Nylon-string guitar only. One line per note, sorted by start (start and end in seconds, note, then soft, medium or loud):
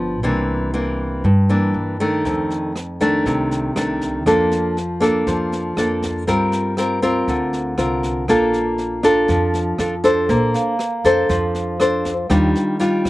0.00 0.19 F3 medium
0.00 0.20 B3 soft
0.00 0.20 D4 medium
0.23 1.22 C3 medium
0.23 0.70 E3 soft
0.23 0.70 A#3 medium
0.23 0.70 D4 medium
0.74 1.24 E3 medium
0.74 1.24 A#3 medium
0.74 1.24 D4 medium
1.25 2.23 G2 medium
1.49 1.96 E3 soft
1.49 1.96 A#3 medium
1.49 1.96 D4 medium
2.00 2.71 D#3 medium
2.00 2.72 A3 medium
2.00 2.72 D4 medium
2.25 3.23 F2 medium
3.01 3.72 D#3 medium
3.01 3.72 A3 medium
3.01 3.72 D4 medium
3.26 4.24 C3 medium
3.76 4.22 D#3 soft
3.76 4.22 A3 soft
3.76 4.23 D4 soft
4.26 5.24 F3 medium
4.26 4.76 A#3 medium
4.26 4.77 D4 soft
4.26 4.77 A4 medium
5.00 5.72 A#3 medium
5.00 5.73 D4 medium
5.00 5.73 A4 medium
5.27 6.25 F3 soft
5.78 6.24 A#3 soft
5.78 6.24 D4 soft
5.78 6.24 A4 soft
6.27 7.25 G3 medium
6.27 6.73 C4 medium
6.27 6.74 F4 medium
6.27 6.74 A#4 medium
6.78 6.99 C4 medium
6.78 6.99 F4 soft
6.78 6.99 A#4 medium
7.02 7.74 C4 medium
7.02 7.74 F4 medium
7.02 7.74 A#4 medium
7.28 8.26 D3 soft
7.78 8.24 C4 soft
7.78 8.24 F4 soft
7.78 8.25 A#4 soft
8.29 9.26 A#3 medium
8.29 9.00 D4 medium
8.29 9.00 F4 medium
8.29 9.00 A4 medium
9.03 9.75 D4 medium
9.03 9.75 F4 medium
9.03 9.75 A4 medium
9.29 10.27 F3 medium
9.79 9.94 D4 soft
9.79 9.94 F4 soft
9.79 9.94 A4 medium
10.04 10.75 D4 medium
10.04 10.75 A4 medium
10.04 10.76 C5 medium
10.29 11.27 A#3 medium
11.05 11.76 D4 medium
11.05 11.76 A4 medium
11.05 11.76 C5 medium
11.29 12.27 F3 medium
11.80 12.12 D4 soft
11.80 12.12 A4 soft
11.80 12.13 C5 medium
12.30 13.10 D#3 medium
12.30 12.76 G3 medium
12.30 12.76 D4 medium
12.30 12.76 F4 medium
12.80 13.10 G3 medium
12.80 13.10 D4 medium
12.80 13.10 F4 medium